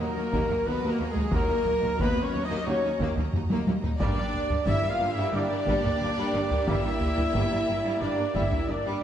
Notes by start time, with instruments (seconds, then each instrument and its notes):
Already playing: string section F#3 F#4 D#5 A#5, violin section F#4
0.00 trombone section F#3 D#4, viola section A#3, french horn section A#4, violin section A#4, trumpet section A#4
0.15 cello section D#2, violin section D#4
0.32 double bass section D#2, cello section D#2, violin section A#3, taiko
0.49 cello section D#2, violin section A#3, taiko low
0.65 cello section D#2, double bass section D#2, viola section B3, violin section D#4 B4, french horn section B4, trumpet section B4
0.82 cello section D#2, violin section A#3
0.88 viola section A#3, violin section A#4, trumpet section A#4, french horn section A#4
1.00 double bass section D#2, cello section D#2, violin section A#3
1.10 viola section G#3, violin section G#4, trumpet section G#4, french horn section G#4
1.16 cello section D#2, violin section D#4, taiko low
1.32 cello section D#2, double bass section D#2, trombone section F#3 D#4, violin section A#3 A#4, viola section A#3, trumpet section A#4, french horn section A#4, taiko
1.49 cello section D#2, violin section A#3
1.66 taiko low
1.82 cello section D#2, violin section A#3, taiko low
1.99 cello section D#2, double bass section D#2, violin section A#3 B4, viola section B3, french horn section B4, trumpet section B4, taiko
2.15 cello section D#2, violin section A#3
2.21 viola section C#4, violin section C#5, french horn section C#5, trumpet section C#5
2.33 double bass section D#2, cello section D#2, violin section D#4
2.44 viola section D#4, french horn section D#5, trumpet section D#5, violin section D#5
2.50 cello section D#2, violin section A#3
2.65 double bass section D#2, cello section D#2, trombone section F#3 D#4, violin section A#3 C#5, viola section C#4, trumpet section C#5, french horn section C#5
2.83 cello section D#2, violin section D#4
3.00 cello section D#2, double bass section D#2, violin section A#3, taiko
3.17 cello section D#2, violin section A#3, taiko low
3.33 double bass section D#2, cello section D#2, violin section D#4, taiko low-mid
3.50 cello section D#2, violin section A#3, taiko high
3.67 double bass section D#2, cello section D#2, violin section A#3, taiko high
3.83 cello section D#2, violin section D#4, taiko low
3.98 double bass section G1, cello section G2, trombone section G3 A#3, violin section G3 G4 D5, string section A#3 G4 A#4 D5, viola section D4, trumpet section D5, french horn section D5, taiko
4.16 cello section G2, violin section G3
4.34 taiko low
4.50 cello section G2, violin section G3, taiko low
4.65 double bass section G1, cello section G2, violin section G3 E5, viola section E4, trumpet section E5, french horn section E5, taiko
4.82 cello section G2, violin section G3
4.88 viola section F4, violin section F5, trumpet section F5, french horn section F5
5.00 double bass section G1, cello section G2, violin section A#3
5.10 viola section E4, violin section E5, trumpet section E5, french horn section E5
5.16 cello section G2, violin section G3
5.33 double bass section G1, cello section G2, trombone section G3 A#3, violin section G3 D5, viola section D4, trumpet section D5, french horn section D5
5.50 cello section G2, violin section A#3
5.67 double bass section G1, cello section G2, violin section G3, taiko
5.84 cello section G2, violin section G3, taiko low
6.00 double bass section G1, cello section G2, violin section A#3
6.16 cello section G2, violin section G3
6.34 double bass section G1, cello section G2, violin section G3
6.51 cello section G2, violin section A#3, taiko low
6.65 double bass section G1, cello section G2, trombone section G3 A#3, violin section G3 E5, viola section E4, trumpet section E5, french horn section E5, taiko
6.84 cello section G2, violin section G3
7.01 taiko low
7.17 cello section G2, violin section G3, taiko low
7.34 double bass section G1, cello section G2, violin section G3, taiko
7.51 cello section G2, violin section G3
7.68 double bass section G1, cello section G2, violin section A#3
7.84 cello section G2, violin section G3
8.00 double bass section G1, cello section G2, trombone section G3 A#3, violin section G3 D5, viola section D4, french horn section D5, trumpet section D5
8.18 cello section G2, violin section A#3
8.34 double bass section G1, cello section G2, violin section G3 E5, viola section E4, french horn section E5, trumpet section E5, taiko
8.51 cello section G2, violin section G3, taiko low
8.67 double bass section G1, cello section G2, violin section A#3 D5, viola section D4, trumpet section D5, french horn section D5
8.85 cello section G2, violin section G3